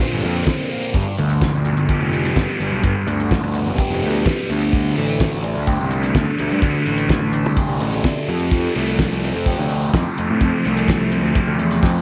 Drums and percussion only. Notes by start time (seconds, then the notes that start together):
0.00 kick
0.23 closed hi-hat
0.35 closed hi-hat
0.47 kick, snare, closed hi-hat
0.71 closed hi-hat
0.83 closed hi-hat
0.94 kick, closed hi-hat
1.17 closed hi-hat
1.30 closed hi-hat
1.41 kick, snare, closed hi-hat
1.65 closed hi-hat
1.77 closed hi-hat
1.89 kick, closed hi-hat
2.13 closed hi-hat
2.25 snare, closed hi-hat
2.36 kick, snare, closed hi-hat
2.60 closed hi-hat
2.83 kick, closed hi-hat
3.08 closed hi-hat
3.20 closed hi-hat
3.31 kick, snare, closed hi-hat
3.55 closed hi-hat
3.78 kick, closed hi-hat
4.03 closed hi-hat
4.14 closed hi-hat
4.26 kick, snare, closed hi-hat
4.50 closed hi-hat
4.62 closed hi-hat
4.73 kick, closed hi-hat
4.97 closed hi-hat
5.09 closed hi-hat
5.20 kick, snare, closed hi-hat
5.44 closed hi-hat
5.56 closed hi-hat
5.67 kick, closed hi-hat
5.91 closed hi-hat
6.03 snare, closed hi-hat
6.15 kick, snare, closed hi-hat
6.39 closed hi-hat
6.62 kick, closed hi-hat
6.86 closed hi-hat
6.98 closed hi-hat
7.09 kick, snare, closed hi-hat
7.33 closed hi-hat
7.57 kick, closed hi-hat
7.80 closed hi-hat
7.92 snare, closed hi-hat
8.04 kick, snare, closed hi-hat
8.28 closed hi-hat
8.40 closed hi-hat
8.51 kick, closed hi-hat
8.75 closed hi-hat
8.87 closed hi-hat
8.99 kick, snare, closed hi-hat
9.23 closed hi-hat
9.34 closed hi-hat
9.46 kick, closed hi-hat
9.70 closed hi-hat
9.81 closed hi-hat
9.94 kick, snare, closed hi-hat
10.18 closed hi-hat
10.41 kick, closed hi-hat
10.65 closed hi-hat
10.77 closed hi-hat
10.88 kick, snare, closed hi-hat
11.12 closed hi-hat
11.35 kick, closed hi-hat
11.59 closed hi-hat
11.71 snare, closed hi-hat
11.83 kick, snare